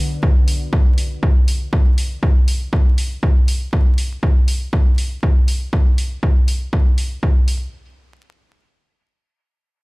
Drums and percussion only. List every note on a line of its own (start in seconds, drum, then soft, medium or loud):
0.23 kick loud
0.48 open hi-hat medium
0.73 kick loud
0.98 open hi-hat medium
1.23 kick loud
1.48 open hi-hat medium
1.73 kick loud
1.98 open hi-hat medium
2.23 kick loud
2.48 open hi-hat medium
2.73 kick loud
2.98 open hi-hat medium
3.23 kick loud
3.48 open hi-hat medium
3.73 kick loud
3.98 open hi-hat medium
4.23 kick loud
4.48 open hi-hat medium
4.73 kick loud
4.98 open hi-hat medium
5.23 kick loud
5.48 open hi-hat medium
5.73 kick loud
5.98 open hi-hat medium
6.23 kick loud
6.48 open hi-hat medium
6.73 kick loud
6.98 open hi-hat medium
7.23 kick loud
7.48 open hi-hat medium